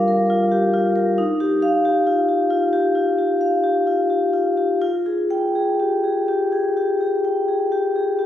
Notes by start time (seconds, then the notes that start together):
Already playing: D4 F4 G4 A#4 F5
0.08 A#4
0.30 F4
0.52 G4
0.74 F4
0.96 A#4
1.18 D#4
1.40 G4
1.62 F5
1.85 G4
2.07 F4
2.29 G4
2.50 F4
2.73 G4
2.95 F4
3.18 G4
3.41 F5
3.64 G4
3.87 F4
4.10 G4
4.33 F4
4.57 G4
4.82 F4
5.06 G#4
5.31 G5
5.55 G#4
5.80 G4
6.04 G#4
6.28 G4
6.52 G#4
6.77 G4
7.01 G#4
7.25 G5
7.48 G#4
7.72 G4
7.96 G#4
8.19 G4